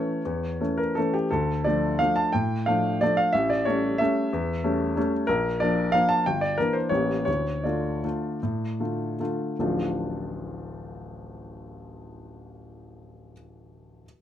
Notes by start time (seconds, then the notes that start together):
Already playing: E3 A3 C#4 C#5
0.25 E2
0.60 E3 A3 C#4
0.77 A#4
0.95 E3 A3 C#4 A4
1.14 G4
1.31 D2 A4
1.64 F3 A3 D4 D5
1.99 F3 A3 D4 F5
2.16 A5
2.32 A2 G5
2.66 F3 A3 D4 F5
3.01 F3 A3 D4 D5
3.17 F5
3.33 A1 E5
3.50 D5
3.65 G3 A3 C#4 C#5
3.98 G3 A3 C#4 E5
4.33 E2
4.64 G3 A3 C#4
4.97 G3 A3 C#4
5.27 A#1 A#4
5.60 F3 A#3 D4 D5
5.92 F3 A#3 D4 F5
6.09 A5
6.26 G1 G5
6.41 D5
6.58 E3 A#3 D4 A#4
6.73 C5
6.89 A1 E3 A#3 G4 C#5
7.25 D2 C#5
7.64 D3 A3 F4 D5
8.04 D3 A3 F4
8.43 A2
8.80 D3 A3 F4
9.20 D3 A3 F4
9.59 D1 A1 F3 A3 D4 F4